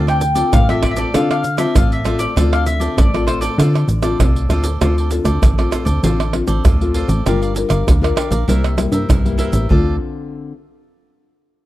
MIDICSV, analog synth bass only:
0, 0, Header, 1, 2, 480
1, 0, Start_track
1, 0, Key_signature, -1, "minor"
1, 0, Tempo, 611434
1, 1858, Time_signature, 4, 2, 24, 8
1, 9151, End_track
2, 0, Start_track
2, 0, Title_t, "Analog synth bass"
2, 0, Program_c, 0, 38
2, 0, Note_on_c, 0, 38, 111
2, 345, Note_off_c, 0, 38, 0
2, 419, Note_on_c, 0, 33, 105
2, 826, Note_off_c, 0, 33, 0
2, 894, Note_on_c, 0, 50, 102
2, 1304, Note_off_c, 0, 50, 0
2, 1376, Note_on_c, 0, 33, 94
2, 1785, Note_off_c, 0, 33, 0
2, 1859, Note_on_c, 0, 38, 110
2, 2266, Note_off_c, 0, 38, 0
2, 2334, Note_on_c, 0, 33, 98
2, 2744, Note_off_c, 0, 33, 0
2, 2812, Note_on_c, 0, 50, 101
2, 3019, Note_off_c, 0, 50, 0
2, 3043, Note_on_c, 0, 33, 80
2, 3266, Note_off_c, 0, 33, 0
2, 3292, Note_on_c, 0, 36, 88
2, 3511, Note_off_c, 0, 36, 0
2, 3526, Note_on_c, 0, 38, 79
2, 3748, Note_off_c, 0, 38, 0
2, 3778, Note_on_c, 0, 38, 95
2, 4084, Note_off_c, 0, 38, 0
2, 4118, Note_on_c, 0, 38, 100
2, 4229, Note_off_c, 0, 38, 0
2, 4257, Note_on_c, 0, 33, 87
2, 4461, Note_off_c, 0, 33, 0
2, 4599, Note_on_c, 0, 38, 83
2, 4709, Note_off_c, 0, 38, 0
2, 4735, Note_on_c, 0, 33, 92
2, 5042, Note_off_c, 0, 33, 0
2, 5085, Note_on_c, 0, 33, 80
2, 5193, Note_off_c, 0, 33, 0
2, 5221, Note_on_c, 0, 38, 90
2, 5526, Note_off_c, 0, 38, 0
2, 5561, Note_on_c, 0, 33, 97
2, 5670, Note_off_c, 0, 33, 0
2, 5701, Note_on_c, 0, 31, 97
2, 6006, Note_off_c, 0, 31, 0
2, 6045, Note_on_c, 0, 31, 96
2, 6153, Note_off_c, 0, 31, 0
2, 6180, Note_on_c, 0, 38, 98
2, 6383, Note_off_c, 0, 38, 0
2, 6522, Note_on_c, 0, 34, 94
2, 6631, Note_off_c, 0, 34, 0
2, 6658, Note_on_c, 0, 36, 92
2, 6964, Note_off_c, 0, 36, 0
2, 7000, Note_on_c, 0, 43, 85
2, 7110, Note_off_c, 0, 43, 0
2, 7139, Note_on_c, 0, 36, 97
2, 7445, Note_off_c, 0, 36, 0
2, 7480, Note_on_c, 0, 33, 95
2, 7590, Note_off_c, 0, 33, 0
2, 7621, Note_on_c, 0, 38, 98
2, 7843, Note_off_c, 0, 38, 0
2, 9151, End_track
0, 0, End_of_file